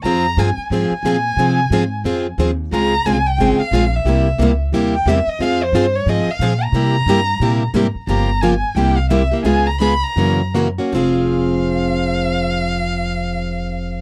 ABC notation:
X:1
M:4/4
L:1/8
Q:"Swing" 1/4=179
K:Fm
V:1 name="Violin"
b2 a2 a4- | a6 z2 | b2 a g2 f2 =e- | =e3 z2 g e ^d |
f c2 d e f2 b- | b6- b z | b2 a2 g f =e2 | a b _c' b3 z2 |
f8- | f8 |]
V:2 name="Steel-string acoustic guitar"
[F,CFA] z [F,CFA] z [F,CFA] z [F,CFA] z | [F,CFA] z [F,CFA] z [F,CFA] z [F,CFA] z | [D,A,CFA] z [D,A,CFA] z [D,A,CFA] z [D,A,CFA] z | [C,G,B,=EG] z [C,G,B,EG] z [C,G,B,EG] z [C,G,B,EG] z |
[F,CFA] z [F,CFA] z [F,CFA] z [F,CFA] z | [C,G,B,=EG] z [C,G,B,EG] z [C,G,B,EG] z [C,G,B,EG] z | [D,F,B,FG] z [D,F,B,FG] z [C,G,B,=EG] z [C,G,B,EG] [B,EG] | [D,A,_CFA] z [D,A,CFA] z [D,_F,B,D_G] z [D,F,B,DG] [B,DG] |
[F,CFA]8- | [F,CFA]8 |]
V:3 name="Steel-string acoustic guitar"
[F,CFA] z [F,CFA] z [F,CFA] z [F,CFA] z | [F,CFA] z [F,CFA] z [F,CFA] z [F,CFA] z | [D,A,CFA] z [D,A,CFA] z [D,A,CFA] z [D,A,CFA] z | [C,G,B,=EG] z [C,G,B,EG] z [C,G,B,EG] z [C,G,B,EG] z |
[F,CFA] z [F,CFA] z [F,CFA] z [F,CFA] z | [C,G,B,=EG] z [C,G,B,EG] z [C,G,B,EG] z [C,G,B,EG] z | [D,F,B,FG] z [D,F,B,FG] z [C,G,B,=EG] z [C,G,B,EG] z | [D,A,_CFA] z [D,A,CFA] z [_G,D_FB] z [G,DFB] z |
[F,CFA]8- | [F,CFA]8 |]
V:4 name="Upright bass" clef=bass
F,,2 G,, z A,, z B,,2 | C,2 A,,2 F,,2 E,,2 | D,,2 C,,2 A,,, z B,,,2 | C,,2 D,,2 ^D,,2 =E,, z |
F,,2 G,,2 A,, z B,,2 | C,2 G,,2 B,,2 A,, z | G,,,4 C,,4 | D,,4 _G,,4 |
F,,,8- | F,,,8 |]